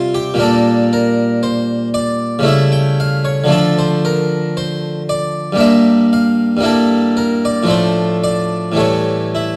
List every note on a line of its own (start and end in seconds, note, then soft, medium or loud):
0.00 0.35 C3 medium
0.00 0.34 G3 soft
0.00 0.37 C4 soft
0.00 0.16 F4 medium
0.15 0.41 G4 medium
0.34 2.41 A#2 medium
0.34 2.40 G3 soft
0.38 2.43 A#3 soft
0.38 2.43 D4 soft
0.38 0.93 A4 medium
0.93 1.44 A#4 medium
1.43 1.87 C5 medium
1.94 2.39 D5 medium
2.39 3.45 C#3 medium
2.39 3.46 G3 medium
2.39 3.47 A3 soft
2.45 3.48 E4 soft
2.45 2.74 E5 medium
2.72 2.99 G5 medium
3.00 3.26 F5 medium
3.25 3.52 C#5 medium
3.44 5.52 D3 soft
3.44 5.53 F3 soft
3.48 5.54 A3 soft
3.48 5.56 D4 soft
3.52 3.79 A4 medium
3.79 4.05 C5 medium
4.05 4.57 A#4 medium
4.57 5.01 C5 medium
5.09 5.61 D5 medium
5.52 6.56 G2 medium
5.52 6.58 G3 soft
5.52 6.59 A#3 soft
5.58 6.61 D4 soft
5.58 6.05 E5 medium
6.13 6.65 F5 medium
6.57 7.63 G2 medium
6.57 7.64 G3 soft
6.57 7.65 A#3 soft
6.63 7.66 E4 soft
6.63 7.18 A4 medium
7.17 7.44 A#4 medium
7.45 7.71 D5 medium
7.63 8.71 A2 soft
7.63 8.72 F3 soft
7.63 8.73 A3 soft
7.68 8.74 D4 soft
7.68 8.16 C5 medium
8.24 8.70 D5 medium
8.72 9.56 A2 soft
8.72 9.56 E3 soft
8.72 9.56 G3 soft
8.77 9.56 A3 soft
8.77 9.26 C#5 medium
9.35 9.56 E4 medium